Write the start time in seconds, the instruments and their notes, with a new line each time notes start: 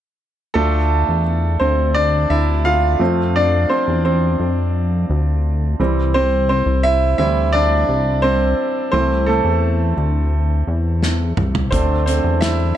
0.54 analog synth bass D2, grand piano A3 D4 F4 A4
1.09 analog synth bass E2
1.60 analog synth bass D2, grand piano C4 C5
1.95 grand piano D4 D5
2.30 analog synth bass D2, grand piano E4 E5
2.65 grand piano F4 F5
2.99 analog synth bass F2, grand piano F3 A3 C4
3.36 grand piano D4 D5
3.69 grand piano C4 C5
3.88 analog synth bass E2
4.05 grand piano C4 C5
4.40 analog synth bass F2
5.10 analog synth bass D2
5.80 analog synth bass C2, grand piano E3 G3 C4
6.14 grand piano C4 C5
6.49 grand piano C4 C5
6.66 analog synth bass C2
6.83 grand piano E4 E5
7.18 analog synth bass D2, grand piano E3 G3 C4 E4 E5
7.53 grand piano D4 D5
7.89 analog synth bass C2
8.22 grand piano C4 C5
8.92 analog synth bass C2, grand piano E3 A3 C4 C5
9.26 grand piano A3 A4
9.44 analog synth bass E2
9.97 analog synth bass D2
10.67 analog synth bass E2
11.03 snare
11.37 analog synth bass C2, mid tom
11.55 floor tom
11.71 analog synth bass D2, grand piano D3 A3 C4 D4 C5, kick, closed hi-hat
12.06 grand piano C4 C5, closed hi-hat
12.24 analog synth bass E2
12.41 grand piano E4 E5, snare, closed hi-hat